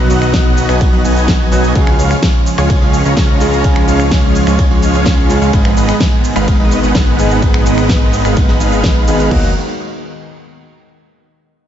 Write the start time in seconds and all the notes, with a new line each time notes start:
Already playing: B2 D#3 F#3 B3 D#4 F#4
0.10 B1 B3 D#4 F#4 D#5 F#5, open hi-hat, cabasa
0.22 finger snap, cabasa
0.33 kick, snare, ride, cabasa
0.57 open hi-hat, cabasa
0.69 B1 B3 D#4 F#4 D#5 G#5, finger snap, cabasa
0.81 kick, ride, cabasa
0.93 B1 B3 D#4 F#4 D#5 F#5
1.05 B1 B3 D#4 F#4 D#5 G#5, open hi-hat, cabasa
1.17 cabasa
1.28 kick, snare, ride, cabasa
1.51 B1 F#3 B3 D#4 F#4 D#5 G#5, open hi-hat, cabasa
1.64 cabasa
1.74 C#2 C#3 F3 G#3 C#4 F4 G#4 C#5 F5, kick, ride, cabasa
1.87 finger snap
1.99 C#2 G#3 C#4 F4 C#5 F5, open hi-hat, cabasa
2.11 finger snap, cabasa
2.22 kick, snare, ride, cabasa
2.46 open hi-hat, cabasa
2.58 C#2 G#3 C#4 F4 C#5 G#5, finger snap, cabasa
2.70 kick, ride, cabasa
2.82 C#2 G#3 C#4 F4 C#5 F5
2.93 open hi-hat, cabasa
3.05 C#2 G#3 C#4 F4 C#5 A#5, cabasa
3.17 C#2 G#3 C#4 F4 C#5 A#5, kick, snare, ride, cabasa
3.40 C#3 G#3 C#4 F4 G#4, open hi-hat, cabasa
3.53 cabasa
3.63 C#3 G#3 C#4 F4 G#4, kick, ride, cabasa
3.76 finger snap
3.88 C#2 G#3 C#4 F4 C#5 F5, open hi-hat, cabasa
4.00 finger snap, cabasa
4.11 kick, snare, ride, cabasa
4.35 open hi-hat, cabasa
4.47 C#2 G#3 C#4 F4 C#5 G#5, finger snap, cabasa
4.59 kick, ride, cabasa
4.71 C#2 G#3 C#4 F4 C#5 F5
4.82 C#2 G#3 C#4 F4 C#5 F5, open hi-hat, cabasa
4.95 cabasa
5.06 kick, snare, ride, cabasa
5.29 G#2 G#3 C#4 F4 G#4, open hi-hat, cabasa
5.41 C#2 G#3 C#4 F4 C#5 F5, cabasa
5.52 G#1 G#2 D#3 G#3 B3 D#4 G#4 B4 D#5, kick, ride, cabasa
5.65 finger snap
5.77 G#1 G#3 B3 D#4 B4 D#5, open hi-hat, cabasa
5.89 finger snap, cabasa
6.00 kick, snare, ride, cabasa
6.24 open hi-hat, cabasa
6.36 G#1 G#3 B3 D#4 B4 F5, finger snap, cabasa
6.48 kick, ride, cabasa
6.60 G#1 G#3 B3 D#4 B4 D#5
6.71 open hi-hat, cabasa
6.83 G#1 G#3 B3 D#4 B4 F#5, cabasa
6.95 G#1 G#3 B3 D#4 B4, kick, snare, ride, cabasa
7.18 G#2 G#3 B3 D#4 G#4, open hi-hat, cabasa
7.31 cabasa
7.41 G#2 G#3 B3 D#4 G#4, kick, ride, cabasa
7.54 finger snap
7.66 G#1 G#3 B3 D#4 B4 D#5, open hi-hat, cabasa
7.78 finger snap, cabasa
7.89 kick, snare, ride, cabasa
8.13 open hi-hat, cabasa
8.25 G#1 G#3 B3 D#4 B4 F5, finger snap, cabasa
8.37 kick, ride, cabasa
8.48 G#1 G#3 B3 D#4 B4 D#5, snare
8.60 G#1 G#3 B3 D#4 B4 F5, open hi-hat, cabasa
8.72 cabasa
8.84 kick, snare, ride, cabasa
9.07 G#1 G#3 B3 D#4 G#4 B4 F5, open hi-hat, cabasa
9.20 cabasa
9.29 D#2 D#3 F#3 A#3 D#4 F#4 D#5 F#5 A#5, kick, floor tom, crash